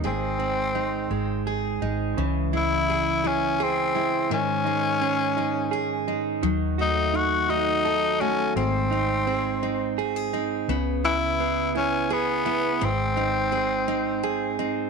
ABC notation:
X:1
M:6/8
L:1/16
Q:3/8=56
K:C#m
V:1 name="Clean electric guitar"
[G,,G]2 ^B,2 D2 G,2 G2 D2 | C,2 E4 E2 G2 E2 | G,,2 D2 C2 D2 G2 D2 | D,2 F2 D2 F2 A2 F2 |
G,,2 D2 ^B,2 D2 G2 D2 | C,2 E2 B,2 E2 G2 E2 | G,,2 D2 ^B,2 D2 G2 D2 |]
V:2 name="Tenor saxophone"
^B,8 z4 | z2 E4 C2 ^B,4 | C8- C2 z2 | z2 D2 F2 D4 C2 |
^B,8 z4 | z2 E4 C2 B,4 | ^B,8- B,2 z2 |]
V:3 name="Steel-string acoustic guitar"
[D,G]2 ^B,2 G,2 B,2 G2 G,2 | E,2 G,2 G2 G,2 G2 G,2 | D,2 G,2 G2 G,2 G2 G,2 | F,2 A,2 F2 A,2 F2 A,2 |
^B,2 B,2 G2 B,2 F G B,2 | B,2 B,2 G2 B,2 G2 B,2 | ^B,2 B,2 G2 B,2 G2 B,2 |]
V:4 name="Fingered electric bass" clef=bass
G,,,6 G,,,4 G,,,2 | C,,12 | z12 | D,,12 |
G,,,12 | C,,12 | G,,,12 |]